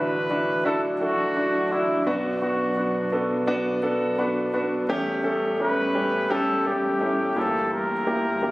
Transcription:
0.00 2.03 D2 medium
0.00 2.03 A2 medium
0.00 2.04 E3 medium
0.00 4.85 F#3 medium
0.00 0.30 D4 medium
0.00 4.85 D4 medium
0.00 0.31 E4 medium
0.00 0.31 F#4 medium
0.00 0.62 B4 medium
0.30 0.58 D4 medium
0.30 0.58 E4 medium
0.30 0.58 F#4 medium
0.65 0.93 D4 medium
0.65 0.93 E4 medium
0.65 0.93 F#4 medium
0.65 0.82 A4 medium
1.01 1.29 D4 medium
1.01 1.29 E4 soft
1.01 1.73 F#4 medium
1.01 1.29 A4 medium
1.36 1.64 D4 medium
1.36 1.64 E4 medium
1.36 1.64 F#4 medium
1.72 2.00 D4 medium
1.72 2.05 E4 medium
1.72 2.00 E4 medium
1.72 2.00 F#4 medium
2.06 4.85 B1 soft
2.06 4.85 F#2 medium
2.06 4.86 B2 medium
2.06 2.35 B3 medium
2.06 2.35 D4 medium
2.06 2.39 F#4 medium
2.06 2.35 F#4 medium
2.42 2.70 B3 medium
2.42 2.70 D4 medium
2.42 3.44 F#4 medium
2.42 2.70 F#4 medium
2.76 3.05 B3 medium
2.76 3.05 D4 soft
2.76 3.05 F#4 medium
3.12 3.40 B3 medium
3.12 3.40 D4 medium
3.12 3.41 A4 medium
3.47 3.75 B3 medium
3.47 3.76 D4 medium
3.47 3.76 F#4 loud
3.82 4.11 B3 medium
3.82 4.11 D4 medium
3.82 4.11 A4 medium
4.18 4.46 B3 medium
4.18 4.46 D4 medium
4.18 4.47 F#4 medium
4.18 4.51 B5 medium
4.53 4.81 B3 medium
4.53 4.82 D4 medium
4.53 4.82 F#4 medium
4.53 4.87 B4 medium
4.88 7.32 A1 medium
4.88 7.32 E2 medium
4.88 7.34 A2 medium
4.88 7.33 G3 medium
4.88 5.17 A3 medium
4.88 7.33 C#4 medium
4.88 5.17 C#4 medium
4.88 5.17 G4 medium
5.24 5.52 A3 medium
5.24 5.52 C#4 medium
5.24 5.52 A4 medium
5.59 5.87 A3 medium
5.59 5.88 C#4 medium
5.59 5.88 G4 medium
5.59 6.33 B4 medium
5.94 6.22 A3 medium
5.94 6.23 C#4 medium
5.94 6.23 G4 medium
6.30 6.58 A3 medium
6.30 6.58 C#4 medium
6.30 6.58 G4 medium
6.30 6.69 A4 medium
6.65 6.93 A3 medium
6.65 6.93 C#4 soft
6.65 6.94 G4 medium
6.65 7.40 G4 medium
7.01 7.29 A3 medium
7.01 7.29 C#4 medium
7.01 7.29 E4 medium
7.35 8.51 G1 soft
7.35 8.51 D2 soft
7.35 8.51 G2 medium
7.35 8.51 E3 medium
7.35 8.51 A#3 medium
7.35 7.93 A#3 medium
7.35 7.93 E4 medium
7.35 7.93 G4 medium
7.35 7.73 A4 medium
7.74 8.51 A#4 medium
8.07 8.35 A#3 medium
8.07 8.35 E4 soft
8.07 8.35 G4 medium
8.42 8.51 A#3 medium
8.42 8.51 E4 soft
8.42 8.51 G4 medium

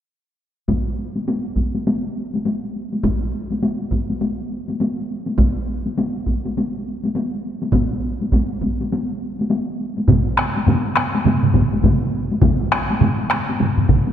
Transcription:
0.68 taiko medium
0.68 taiko high soft
1.16 taiko high soft
1.28 taiko high soft
1.56 taiko soft
1.56 taiko high soft
1.75 taiko high soft
1.87 taiko high soft
2.34 taiko high soft
2.45 taiko high soft
2.92 taiko high soft
3.03 taiko medium
3.03 taiko high soft
3.50 taiko high soft
3.62 taiko high soft
3.91 taiko medium
3.91 taiko high soft
4.10 taiko high soft
4.21 taiko high soft
4.68 taiko high soft
4.80 taiko high soft
5.27 taiko high soft
5.38 taiko medium
5.38 taiko high soft
5.86 taiko high soft
5.97 taiko high medium
6.27 taiko soft
6.27 taiko high soft
6.45 taiko high soft
6.57 taiko high soft
7.03 taiko high soft
7.15 taiko high medium
7.62 taiko high soft
7.73 taiko medium
7.73 taiko high medium
8.21 taiko high soft
8.32 taiko medium
8.32 taiko high medium
8.62 taiko medium
8.62 taiko high soft
8.80 taiko high soft
8.92 taiko high medium
9.39 taiko high soft
9.50 taiko high medium
9.97 taiko high soft
10.08 taiko medium
10.08 taiko low-mid medium
10.08 taiko mid medium
10.08 taiko high medium
10.37 taiko rim medium
10.56 taiko high soft
10.67 taiko low-mid medium
10.67 taiko mid medium
10.67 taiko high medium
10.96 taiko rim medium
11.14 taiko high soft
11.25 taiko low-mid medium
11.25 taiko mid medium
11.25 taiko high medium
11.43 taiko low-mid medium
11.43 taiko mid medium
11.54 taiko medium
11.54 taiko low-mid medium
11.54 taiko mid medium
11.54 taiko high soft
11.73 taiko high soft
11.83 taiko medium
11.83 taiko low-mid medium
11.83 taiko mid medium
11.83 taiko high medium
12.31 taiko high soft
12.42 taiko medium
12.42 taiko low-mid medium
12.42 taiko mid medium
12.42 taiko high medium
12.72 taiko rim medium
12.90 taiko high soft
13.01 taiko low-mid medium
13.01 taiko mid medium
13.01 taiko high medium
13.31 taiko rim medium
13.49 taiko high soft
13.60 taiko low-mid medium
13.60 taiko mid medium
13.60 taiko high medium
13.78 taiko low-mid medium
13.78 taiko mid medium
13.89 taiko medium
13.89 taiko low-mid loud
13.89 taiko mid medium
13.89 taiko high soft
14.07 taiko high soft

